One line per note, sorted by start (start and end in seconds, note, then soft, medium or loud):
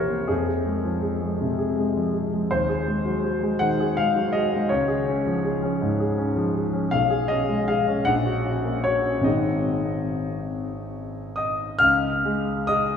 0.00 0.26 C2 soft
0.00 0.31 E3 soft
0.00 0.10 A#3 soft
0.00 0.31 G4 soft
0.00 0.29 A#4 medium
0.00 0.31 C5 medium
0.00 0.31 C#5 medium
0.10 0.29 A#3 soft
0.28 2.46 F2 medium
0.28 0.45 G#4 medium
0.46 0.76 G#4 soft
0.66 0.95 G#3 soft
0.85 1.14 F3 soft
1.02 1.32 G#4 soft
1.22 1.51 G#3 soft
1.41 1.70 C3 soft
1.59 1.88 G#4 soft
1.78 2.07 G#3 soft
1.97 2.25 F3 soft
2.14 2.43 G#4 soft
2.33 2.51 G#3 soft
2.51 4.66 D#2 medium
2.51 3.61 C5 medium
2.69 2.98 G#4 medium
2.88 3.17 G#3 soft
3.06 3.35 F#3 soft
3.24 3.53 G#4 soft
3.43 3.72 G#3 soft
3.59 3.90 D#3 medium
3.59 3.96 F#5 loud
3.80 4.08 G#4 medium
3.97 4.26 G#3 soft
3.97 4.33 F5 medium
4.16 4.44 F#3 soft
4.33 4.63 G#4 soft
4.33 4.69 D#5 medium
4.53 4.70 G#3 medium
4.69 6.88 C#2 medium
4.69 6.54 C#5 medium
4.88 5.18 G#4 medium
5.08 5.37 C#4 medium
5.26 5.55 F3 soft
5.44 5.73 G#4 medium
5.63 5.91 C#4 medium
5.82 6.10 G#2 soft
6.00 6.29 G#4 medium
6.18 6.47 C#4 soft
6.36 6.65 F3 soft
6.55 6.84 G#4 soft
6.73 6.91 C#4 soft
6.91 8.03 B1 medium
6.91 7.29 F5 loud
7.10 7.40 G#4 medium
7.28 7.60 C#4 soft
7.28 7.67 D#5 medium
7.49 7.79 G#3 soft
7.68 7.99 G#4 soft
7.68 8.06 F5 medium
7.87 8.06 C#4 medium
8.05 9.23 A#1 medium
8.05 8.85 F#5 loud
8.26 8.58 F#4 medium
8.44 8.77 C#4 soft
8.65 8.97 A#3 soft
8.84 9.18 F#4 soft
8.84 9.25 C#5 medium
9.05 9.26 C#4 soft
9.21 11.74 G#1 soft
9.21 11.75 C4 soft
9.21 11.76 D#4 soft
9.21 10.50 D#5 medium
9.25 11.76 G#4 soft
11.36 11.78 D#5 medium
11.36 11.80 D#6 medium
11.79 12.97 C#2 medium
11.79 12.64 F5 medium
11.79 12.67 F6 loud
12.25 12.94 G#3 medium
12.67 12.97 G#4 soft
12.67 12.97 D#5 medium
12.67 12.97 D#6 loud